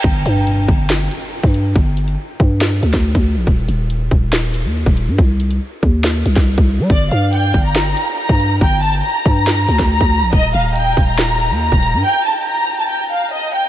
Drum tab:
HH |x-x-x---x-x---x-|x-xx----x-xx-x--|x-x-x---x-x---x-|x-xx----x-xx-x--|
CP |--------x-------|--------x-------|--------x-------|--------x-------|
SD |--------o-------|--------o--o----|--------o-------|--------o--o----|
BD |o-----o------o--|o-----o----o-o--|o-----o------o--|o-----o----o-o--|

HH |x-x-x---x-x---x-|x-xx----x-xx-x--|x-x-x---x-x---x-|----------------|
CP |--------x-------|--------x-------|--------x-------|----------------|
SD |--------o-------|--------o--o----|--------o-------|----------------|
BD |o-----o------o--|o-----o----o-o--|o-----o------o--|----------------|